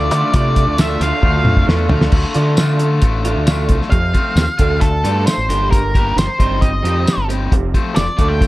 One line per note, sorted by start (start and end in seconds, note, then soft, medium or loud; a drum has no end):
0.00 0.11 D2 loud
0.00 0.11 D3 medium
0.00 0.11 A3 loud
0.00 0.12 D4 loud
0.00 0.13 F4 medium
0.00 2.09 F4 medium
0.00 0.35 D5 loud
0.00 2.09 D5 medium
0.00 0.10 A5 medium
0.00 2.09 D6 medium
0.11 0.32 D3 medium
0.11 0.22 D3 loud
0.11 0.32 A3 loud
0.11 0.33 D4 loud
0.11 0.33 F4 loud
0.11 2.11 G5 medium
0.11 closed hi-hat medium
0.33 0.68 C3 loud
0.33 0.77 D3 medium
0.33 0.78 A3 loud
0.33 0.78 D4 loud
0.33 0.79 F4 medium
0.33 0.80 D5 medium
0.33 kick loud
0.33 closed hi-hat loud
0.56 kick medium
0.56 closed hi-hat medium
0.68 0.99 D2 medium
0.78 0.99 D3 medium
0.78 0.99 A3 medium
0.78 1.00 D4 medium
0.78 1.00 F4 medium
0.78 1.03 E5 medium
0.78 snare loud
0.78 closed hi-hat loud
0.78 tambourine loud
1.00 1.11 D2 medium
1.00 1.22 D3 medium
1.00 1.22 A3 medium
1.00 1.22 D4 medium
1.00 1.23 F4 loud
1.00 1.65 F5 medium
1.00 snare soft
1.00 closed hi-hat medium
1.23 1.44 D2 loud
1.23 1.68 D3 loud
1.23 1.68 A3 loud
1.23 1.69 D4 loud
1.23 1.69 F4 loud
1.23 kick medium
1.23 high tom medium
1.45 1.65 F2 medium
1.45 mid tom medium
1.57 kick medium
1.68 1.88 E2 medium
1.68 1.87 D3 medium
1.68 1.88 A3 medium
1.68 1.89 D4 medium
1.68 1.90 F4 medium
1.68 snare loud
1.89 2.10 D2 medium
1.89 2.10 D3 loud
1.89 2.11 A3 medium
1.89 2.11 D4 loud
1.89 2.12 F4 loud
1.89 floor tom loud
2.01 snare medium
2.11 2.23 D2 loud
2.11 2.55 D3 medium
2.11 2.36 A3 medium
2.11 2.35 D4 loud
2.11 2.33 F4 medium
2.11 kick loud
2.11 crash loud
2.34 2.99 D3 medium
2.34 2.56 D3 medium
2.34 2.57 A3 medium
2.34 2.58 D4 medium
2.34 2.59 F4 medium
2.34 closed hi-hat medium
2.57 3.00 D3 medium
2.57 2.82 A3 medium
2.57 2.80 D4 loud
2.57 2.79 F4 loud
2.57 snare loud
2.57 closed hi-hat medium
2.57 tambourine loud
2.79 3.02 A3 medium
2.79 3.03 D4 medium
2.79 3.04 F4 medium
2.79 closed hi-hat medium
3.02 3.34 A1 loud
3.02 3.26 D3 medium
3.02 3.26 A3 medium
3.02 3.24 D4 medium
3.02 3.23 F4 medium
3.02 kick medium
3.02 closed hi-hat medium
3.25 3.45 D3 medium
3.25 3.46 A3 medium
3.25 3.47 D4 medium
3.25 3.48 F4 loud
3.25 closed hi-hat medium
3.36 3.68 D2 medium
3.46 3.90 D3 medium
3.46 3.71 A3 medium
3.46 3.69 D4 medium
3.46 3.67 F4 medium
3.46 snare loud
3.46 closed hi-hat medium
3.46 tambourine loud
3.69 3.80 C2 medium
3.69 3.92 A3 medium
3.69 3.91 D4 medium
3.69 3.90 F4 medium
3.69 kick medium
3.69 closed hi-hat medium
3.82 snare soft
3.90 4.13 F2 medium
3.90 4.13 C3 medium
3.90 4.13 F3 medium
3.90 4.84 F5 loud
3.90 kick loud
3.90 closed hi-hat medium
4.14 4.35 F2 medium
4.14 4.35 C3 medium
4.14 4.44 F3 medium
4.14 4.44 A3 medium
4.14 4.44 C4 medium
4.14 4.43 F4 medium
4.14 kick medium
4.14 closed hi-hat medium
4.36 4.47 D#2 medium
4.36 4.57 F2 medium
4.36 4.58 C3 medium
4.36 snare loud
4.36 closed hi-hat medium
4.36 tambourine loud
4.58 5.02 D2 medium
4.58 4.88 D3 medium
4.58 4.89 A3 medium
4.58 4.88 D4 medium
4.58 4.88 F4 medium
4.58 kick medium
4.58 closed hi-hat medium
4.81 5.02 D3 medium
4.81 5.02 A3 medium
4.81 5.23 A4 medium
4.81 kick medium
4.81 closed hi-hat medium
5.04 5.26 G2 medium
5.04 5.34 D3 medium
5.04 5.34 A3 medium
5.04 5.34 D4 medium
5.04 5.34 F4 medium
5.04 closed hi-hat medium
5.26 5.47 D3 medium
5.26 5.47 A3 medium
5.26 5.68 C5 medium
5.26 snare loud
5.26 closed hi-hat medium
5.26 tambourine loud
5.38 5.49 A1 medium
5.49 6.13 G1 medium
5.49 5.69 G2 medium
5.49 5.70 D3 loud
5.49 5.79 G3 medium
5.49 5.79 A#3 medium
5.49 5.79 D4 medium
5.49 5.79 G4 medium
5.49 closed hi-hat medium
5.70 5.92 G2 medium
5.70 5.93 D3 medium
5.70 5.93 G3 loud
5.70 6.18 A#4 medium
5.70 kick medium
5.70 closed hi-hat medium
5.94 6.14 G2 medium
5.94 6.14 D3 medium
5.94 6.25 G3 medium
5.94 6.25 A#3 medium
5.94 6.24 D4 medium
5.94 6.24 G4 medium
5.94 kick medium
5.94 closed hi-hat soft
6.16 6.27 G1 medium
6.16 6.37 G2 medium
6.16 6.37 D3 medium
6.16 6.64 C5 medium
6.16 snare medium
6.16 closed hi-hat medium
6.16 tambourine loud
6.39 6.82 G1 loud
6.39 6.70 G3 medium
6.39 6.69 C4 medium
6.39 6.69 D#4 medium
6.39 6.69 G4 medium
6.39 kick medium
6.39 closed hi-hat medium
6.60 6.81 G3 medium
6.60 6.81 C4 medium
6.60 7.25 D#5 medium
6.60 kick medium
6.60 closed hi-hat medium
6.82 7.05 F2 loud
6.82 7.03 G3 medium
6.82 7.15 C4 medium
6.82 7.14 D#4 medium
6.82 7.14 G4 loud
6.82 closed hi-hat medium
6.87 7.15 G3 medium
7.05 7.26 G3 medium
7.05 7.26 C4 medium
7.05 snare loud
7.05 closed hi-hat medium
7.05 tambourine loud
7.17 7.49 G1 medium
7.29 7.52 G3 medium
7.29 7.52 C4 medium
7.29 7.52 D#4 medium
7.29 7.52 G4 medium
7.29 closed hi-hat medium
7.51 7.73 F1 medium
7.51 7.72 F2 medium
7.51 7.73 C3 medium
7.51 7.73 F3 medium
7.51 kick loud
7.51 closed hi-hat medium
7.74 7.94 F2 medium
7.74 7.94 C3 medium
7.74 8.04 F3 medium
7.74 8.04 A3 medium
7.74 8.04 C4 medium
7.74 8.04 F4 medium
7.74 kick medium
7.74 closed hi-hat medium
7.96 8.07 F1 medium
7.96 8.17 F2 medium
7.96 8.17 C3 medium
7.96 8.31 D5 medium
7.96 snare loud
7.96 closed hi-hat medium
7.96 tambourine loud
8.17 8.47 D2 medium
8.17 8.47 D3 medium
8.17 8.47 A3 medium
8.17 8.47 D4 medium
8.17 8.47 F4 medium
8.17 kick medium
8.17 closed hi-hat medium
8.28 8.47 G5 medium
8.41 8.47 D3 medium
8.41 8.47 A3 medium
8.41 kick medium
8.41 closed hi-hat medium